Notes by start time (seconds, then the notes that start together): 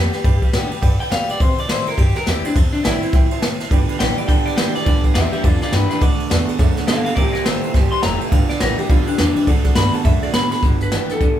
Already playing: F2 D3 G3 B3 G4
0.13 B3 G4 B4 D5 G5, muted upright bass stroke, snare, ride
0.24 G2 B4 D5 G5, kick, ride
0.42 B4 D5 F5, kick, ride
0.52 A2 D3 G3 B3 G4 B4 D5 G5, snare, ride
0.69 B3 G4 B4 D5 A5, muted upright bass stroke, ride
0.82 G2 D3 B4 D5 G5, kick, ride
0.99 B4 D5 G5, ride
1.10 B2 D3 G3 B3 G4 B4 F5 G5, snare, ride
1.28 B4 D5 G5, muted upright bass stroke, ride
1.38 C3 C5 E5 G5, kick, ride
1.56 C5 D5 E5 A5, ride
1.68 A2 E3 G3 C4 E4 C5 E5 G5, snare, ride
1.86 C4 E4 A#4 C5 E5 G5, muted upright bass stroke, ride
1.97 G2 G4 C5 E5 G5, kick, ride
2.14 A#4 C5 E5 G5, muted upright bass stroke, snare, ride
2.25 D#2 E3 G3 C4 E4 G4 C5 E5 G5, snare, ride
2.44 C4 D4 E4 C5 E5 G5, muted upright bass stroke, ride
2.55 E2 C3 C5 E5 A5, kick, ride
2.73 D4 C5 E5 A5, muted upright bass stroke, ride
2.83 A1 E3 G3 C4 E4 C5 E5 G5, snare, ride
3.02 C4 E4 C5 E5 G5, muted upright bass stroke, ride
3.13 B1 B2 C5 E5 G5, kick, snare, ride
3.31 C5 E5 A5, ride
3.42 C2 A2 C5 E5 G5, snare, ride
3.60 C5 E5 A5, muted upright bass stroke, snare, ride
3.71 G1 G2 D3 B4 D5 G5, kick, ride
3.88 B4 D5 G5, muted upright bass stroke, ride
3.99 A1 G2 D3 E3 G3 B3 G4 B4 D5 G5, snare, ride
4.17 B3 G4 B4 D5 G5, ride
4.28 G2 D3 B4 D5 G5, kick, ride
4.46 B4 D5 G5, ride
4.56 C2 G2 D3 E3 G3 B3 G4 B4 D5 G5, snare, ride
4.75 B3 G4 B4 D5 G5, muted upright bass stroke, snare, ride
4.86 D2 G2 D3 B4 D5 G5, kick, ride
5.04 B4 D5 G5, kick, ride
5.14 E2 G2 D3 E3 G3 B3 G4 B4 D5 E5 G5, snare, ride
5.32 B3 G4 B4 D5 E5 G5, ride
5.43 F2 G2 D3 F4 B4 D5 A5, kick, ride
5.61 F4 B4 D5 G5, snare, ride
5.72 G2 D3 E3 G3 B3 D4 G4 B4 D5 G5, snare, ride
5.90 B3 D4 G4 B4 D5 G5, snare, ride
6.01 D2 D3 A3 A4 D5 F#5, kick, ride
6.19 A4 D5 E5, muted upright bass stroke, ride
6.30 E2 D3 A3 B3 D4 F#4 A4 D5 F#5, snare, ride
6.47 D4 F#4 A4 D5 F#5, muted upright bass stroke, ride
6.59 F#2 A2 D3 A3 A4 D5 E5, kick, snare, ride
6.77 A4 D5 F#5, snare, ride
6.87 D2 D3 B3 A4 F5, snare, ride
7.04 A4 D5 F5 F#5, muted upright bass stroke, ride
7.15 C2 C3 G3 A#4 C5 D5 E5 G5, kick, ride
7.32 A#4 C5 D5 E5 G5, muted upright bass stroke, snare, ride
7.45 A1 C3 E3 G3 A3 C4 E4 C5 E5, snare, ride
7.63 C4 E4 C5 E5 G5, ride
7.73 G1 G2 C3 G3 C5 E5 G5, kick, snare, ride
7.92 C5 E5 G5 C6, muted upright bass stroke, ride
8.02 E1 C3 E3 G3 A3 C4 E4 E5 G5 A#5, snare, ride
8.20 C4 E4 C5 E5 G5, muted upright bass stroke, ride
8.30 G1 G2 D3 B4 D5 F5 G5, kick, ride
8.49 B4 D5 G5, muted upright bass stroke, snare, ride
8.60 A1 G2 D3 E3 G3 B3 G4 A#4 B4 D5 G5, snare, ride
8.78 B3 G4 B4 D5 G5, muted upright bass stroke, ride
8.89 B1 G2 B2 D3 F4 B4 D5 F5, kick, ride
9.07 D4 B4 D5 G5, muted upright bass stroke, ride
9.18 E2 G2 C3 E3 D4 B4 G5, snare, ride
9.36 B4 D5 G5, muted upright bass stroke, ride
9.47 D2 D3 A3 A4 D5 F#5, kick, ride
9.64 A4 D5 F#5, muted upright bass stroke, kick, snare, ride
9.75 G2 D3 A3 B3 D4 F#4 A4 D5 F#5 B5, snare, ride
9.93 D4 F#4 A4 D5 F#5 A5, muted upright bass stroke, ride
10.04 F#2 B2 D3 A3 A4 D5 E5 A5, kick, ride
10.22 A4 D5 F#5, muted upright bass stroke, ride
10.34 A2 D3 B3 A4 D5 F#5 B5, snare, ride
10.52 A4 D5 F#5 B5, muted upright bass stroke, snare, ride
10.63 G1 G2 D3, kick, closed hi-hat
10.81 B4, closed hi-hat
10.92 G2 D3 E3 G3 B3 G4, snare, closed hi-hat
11.09 A4, muted upright bass stroke, snare, closed hi-hat
11.21 D2 G2 D3, kick, closed hi-hat